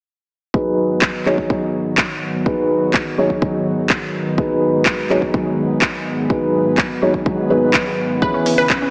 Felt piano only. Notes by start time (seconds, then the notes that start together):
0.54 F#3 D#4 G#4 B4
1.26 F#3 D#4 G#4 C#5
2.46 F#3 D#4 G#4 B4
3.18 F#3 D#4 G#4 C#5
4.38 F#3 D#4 G#4 B4
5.10 F#3 D#4 G#4 C#5
6.30 F#3 D#4 G#4 B4
7.02 F#3 D#4 G#4 C#5
7.50 F#3 D#4 G#4 B4
8.22 E3 C#4 G#4 B4